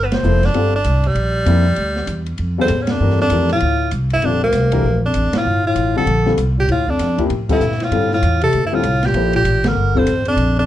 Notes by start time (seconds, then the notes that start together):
Already playing: G1
0.05 B3
0.12 C4, snare, ride
0.23 F1 F3 A#3 E4 A4 C5, hi-hat pedal
0.43 D4, snare, ride
0.54 G1 D3 G3 C4 F4 A4, ride
0.75 D4
0.84 C2, hi-hat pedal, ride
1.03 ride
1.07 G3
1.15 A#1, ride
1.46 F2 C3 F3 A#3 E4 G4, hi-hat pedal, ride
1.76 D2, ride
1.96 snare
2.07 E2, hi-hat pedal, ride
2.26 ride
2.38 F2, ride
2.58 E2 D3 G3 C4 F4 A4
2.68 A2, hi-hat pedal, ride
2.81 E2 C#4
2.87 F2 D4, snare, ride
3.00 G2 E3 A3 D4 G4 A#4
3.10 snare
3.20 F2 D4, snare
3.30 F2 E3 A3 D4 G4 A#4, hi-hat pedal, ride
3.49 A2 F4, snare, ride
3.60 D2, ride
3.91 C2, hi-hat pedal, ride
4.10 G2 E4, ride
4.22 A#1 F2 D3 G3 C4 D4 F4 A4, ride
4.43 D2 A#3
4.52 C2, snare, hi-hat pedal, ride
4.72 E3 A3 D4 G4 A#4, kick, ride
4.84 A#1
5.04 F2 D4
5.14 A1, hi-hat pedal, ride
5.33 A2, muted upright bass stroke, snare, ride
5.37 F4
5.45 G1
5.66 A2 F4
5.75 A1, hi-hat pedal, ride
5.96 D3 G3 C4 F4 A4
6.06 A#1, ride
6.26 D3 G3 C4 F4 A4, snare
6.38 C2, hi-hat pedal, ride
6.58 A#2 G4
6.68 D2 A2 F4, ride
6.88 F2 D4, kick
6.99 F2, snare, hi-hat pedal, ride
7.18 C3 F3 A#3 E4 G4, kick, ride
7.30 A2, ride
7.49 G2 D3 G3 C4 E4 F4 A4, kick, crash
7.60 A#2, hi-hat pedal
7.72 snare
7.80 A2 F4, snare, ride
7.91 G2 D3 G3 C4 F4 A4, ride
8.11 A2 F4, snare
8.22 E2, hi-hat pedal, ride
8.41 C3 A4, ride
8.53 D2, ride
8.64 G2 E4
8.72 A2 D3 G3 C4 F4 A4
8.83 C2, hi-hat pedal, ride
9.03 A#2 G4, snare, ride
9.13 A#1 F3 A#3 E4 A4 C5, ride
9.33 A#2 G4, ride
9.44 A1, hi-hat pedal, ride
9.64 D3 A#4, snare, ride
9.75 G1
9.95 F2 D3 G3 C4 F4 A4, kick
10.06 A1, hi-hat pedal, ride
10.25 F2 D4, ride
10.36 A#1, ride
10.58 F2 D4